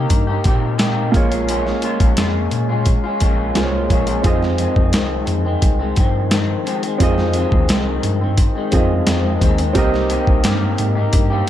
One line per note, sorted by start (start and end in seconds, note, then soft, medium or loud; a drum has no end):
0.00 0.28 A#3 soft
0.00 1.09 A#3 medium
0.00 0.28 D#4 medium
0.00 1.10 D#4 medium
0.00 0.26 G4 medium
0.00 1.11 G4 medium
0.00 1.12 C5 medium
0.10 0.38 G2 medium
0.10 kick medium
0.10 closed hi-hat medium
0.27 0.44 A#3 medium
0.27 0.45 D#4 medium
0.27 0.45 G4 medium
0.44 1.14 A#2 medium
0.44 0.77 C3 medium
0.44 0.77 A#3 medium
0.44 0.78 D#4 medium
0.44 0.79 G4 medium
0.44 kick medium
0.44 closed hi-hat medium
0.78 1.12 C3 medium
0.78 1.14 A#3 medium
0.78 1.14 D#4 medium
0.78 1.14 G4 medium
0.78 snare loud
0.78 closed hi-hat medium
1.12 1.70 A#1 medium
1.12 1.31 A#2 medium
1.12 1.31 G#3 medium
1.12 3.50 A#3 medium
1.12 1.30 C#4 medium
1.12 3.51 F4 medium
1.12 1.29 F4 medium
1.12 3.52 G#4 medium
1.12 kick loud
1.12 closed hi-hat medium
1.17 3.53 C#5 medium
1.30 1.48 G#3 soft
1.30 1.48 C#4 medium
1.30 1.48 F4 medium
1.30 closed hi-hat medium
1.48 1.66 A#2 medium
1.48 1.66 G#3 medium
1.48 1.65 C#4 medium
1.48 1.64 F4 medium
1.48 closed hi-hat medium
1.65 1.82 G#3 soft
1.65 1.83 C#4 medium
1.65 1.83 F4 medium
1.65 snare soft
1.82 2.17 A#2 medium
1.82 2.17 G#3 medium
1.82 2.18 C#4 medium
1.82 2.19 F4 medium
1.82 closed hi-hat medium
2.00 2.14 A#1 medium
2.00 kick medium
2.00 closed hi-hat soft
2.17 2.45 F2 medium
2.17 2.69 A#2 medium
2.17 2.70 G#3 medium
2.17 2.70 C#4 medium
2.17 2.68 F4 medium
2.17 snare loud
2.17 closed hi-hat medium
2.51 2.93 A#2 medium
2.51 closed hi-hat medium
2.69 3.05 G#3 medium
2.69 3.04 C#4 medium
2.69 3.03 F4 medium
2.86 kick medium
2.86 closed hi-hat medium
3.04 3.20 G#3 soft
3.04 3.21 C#4 medium
3.04 3.21 F4 medium
3.20 3.49 A#1 medium
3.20 3.53 A#2 medium
3.20 3.54 G#3 medium
3.20 3.54 C#4 medium
3.20 3.55 F4 medium
3.20 kick medium
3.20 closed hi-hat medium
3.54 3.83 C2 medium
3.54 3.88 A#2 medium
3.54 3.89 G#3 medium
3.54 4.24 A#3 medium
3.54 3.90 C#4 medium
3.54 4.22 F4 soft
3.54 3.91 F4 medium
3.54 4.24 G#4 soft
3.54 3.63 C5 soft
3.54 snare loud
3.54 closed hi-hat medium
3.64 4.29 C#5 medium
3.90 4.18 A#1 medium
3.90 4.07 A#2 medium
3.90 4.08 G#3 medium
3.90 4.07 C#4 medium
3.90 4.05 F4 medium
3.90 kick medium
3.90 closed hi-hat medium
4.07 4.24 G#3 soft
4.07 4.25 C#4 soft
4.07 4.24 F4 medium
4.07 closed hi-hat medium
4.22 4.42 F2 medium
4.22 4.66 F2 loud
4.22 4.42 D#3 medium
4.22 4.42 G#3 medium
4.22 6.95 C4 medium
4.22 4.40 C4 medium
4.22 6.96 F4 medium
4.22 6.97 G#4 medium
4.22 kick medium
4.22 closed hi-hat medium
4.27 6.98 D#5 medium
4.41 4.58 D#3 soft
4.41 4.59 G#3 medium
4.41 4.59 C4 medium
4.41 snare soft
4.58 4.92 F2 medium
4.58 4.93 D#3 medium
4.58 4.93 G#3 medium
4.58 4.94 C4 medium
4.58 closed hi-hat medium
4.76 4.94 F2 medium
4.76 kick medium
4.93 5.21 C2 medium
4.93 5.45 F2 medium
4.93 5.46 D#3 medium
4.93 5.45 G#3 medium
4.93 5.44 C4 medium
4.93 snare loud
4.93 closed hi-hat medium
5.27 5.55 F2 medium
5.27 closed hi-hat medium
5.45 5.81 D#3 soft
5.45 5.80 G#3 medium
5.45 5.78 C4 medium
5.62 5.90 C2 medium
5.62 kick medium
5.62 closed hi-hat medium
5.79 5.97 D#3 soft
5.79 5.98 G#3 medium
5.79 5.97 C4 medium
5.96 6.30 F2 medium
5.96 6.52 G2 medium
5.96 6.31 D#3 medium
5.96 6.32 C4 medium
5.96 kick medium
5.96 closed hi-hat medium
6.31 6.64 F2 medium
6.31 6.65 D#3 medium
6.31 6.67 C4 medium
6.31 snare loud
6.31 closed hi-hat medium
6.65 6.83 F2 medium
6.65 6.83 D#3 medium
6.65 6.83 G#3 medium
6.65 6.82 C4 medium
6.65 closed hi-hat medium
6.83 7.00 D#3 soft
6.83 7.01 G#3 medium
6.83 7.00 C4 medium
6.83 closed hi-hat medium
6.98 7.18 F2 medium
6.98 7.42 F2 loud
6.98 7.18 D#3 medium
6.98 7.18 G#3 medium
6.98 8.68 C4 medium
6.98 8.69 F4 medium
6.98 8.70 G#4 medium
6.98 kick medium
6.98 closed hi-hat medium
7.03 7.17 C4 medium
7.03 8.71 D#5 medium
7.18 7.35 D#3 soft
7.18 7.35 G#3 soft
7.18 7.35 C4 soft
7.18 snare soft
7.34 7.68 F2 medium
7.34 7.69 D#3 medium
7.34 7.70 G#3 medium
7.34 7.70 C4 medium
7.34 closed hi-hat medium
7.52 7.66 D#2 medium
7.52 kick medium
7.69 7.97 C2 loud
7.69 8.21 F2 medium
7.69 8.22 D#3 medium
7.69 8.22 G#3 medium
7.69 8.20 C4 medium
7.69 snare loud
7.69 closed hi-hat medium
8.03 8.45 G2 medium
8.03 closed hi-hat medium
8.21 8.57 D#3 medium
8.21 8.54 C4 medium
8.38 kick medium
8.38 closed hi-hat medium
8.55 8.72 D#3 soft
8.55 8.73 G#3 medium
8.55 8.73 C4 medium
8.72 9.05 F2 medium
8.72 9.00 F2 medium
8.72 9.06 D#3 medium
8.72 9.06 G#3 medium
8.72 9.72 C4 medium
8.72 9.07 C4 medium
8.72 9.76 F4 soft
8.72 9.76 G#4 soft
8.72 9.77 D#5 medium
8.72 kick medium
8.72 closed hi-hat medium
9.06 9.40 F2 medium
9.06 9.35 F2 medium
9.06 9.41 D#3 medium
9.06 9.42 G#3 medium
9.06 9.42 C4 medium
9.06 snare loud
9.06 closed hi-hat medium
9.41 9.69 D#2 medium
9.41 9.59 F2 medium
9.41 9.59 D#3 medium
9.41 9.58 G#3 medium
9.41 9.57 C4 medium
9.41 kick loud
9.41 closed hi-hat medium
9.58 9.77 D#3 soft
9.58 9.76 G#3 soft
9.58 9.76 C4 medium
9.58 closed hi-hat medium
9.73 10.17 C2 loud
9.73 9.93 C3 medium
9.73 9.93 A#3 medium
9.73 11.49 C4 medium
9.73 9.92 D#4 medium
9.73 11.49 G4 medium
9.73 9.91 G4 medium
9.73 11.49 A#4 medium
9.73 kick medium
9.73 closed hi-hat medium
9.78 11.49 D#5 medium
9.92 10.09 A#3 soft
9.92 10.09 D#4 medium
9.92 10.10 G4 medium
9.92 snare soft
10.09 10.43 C3 medium
10.09 10.43 A#3 medium
10.09 10.43 D#4 medium
10.09 10.44 G4 medium
10.09 closed hi-hat medium
10.27 10.41 C2 medium
10.27 kick medium
10.44 10.72 G2 medium
10.44 10.96 C3 medium
10.44 10.96 A#3 medium
10.44 10.96 D#4 medium
10.44 10.94 G4 medium
10.44 snare loud
10.44 closed hi-hat medium
10.78 11.07 G#2 medium
10.78 closed hi-hat medium
10.95 11.32 A#3 medium
10.95 11.31 D#4 medium
10.95 11.29 G4 medium
11.13 11.41 G2 medium
11.13 kick medium
11.13 closed hi-hat medium
11.30 11.47 A#3 medium
11.30 11.47 D#4 medium
11.30 11.48 G4 medium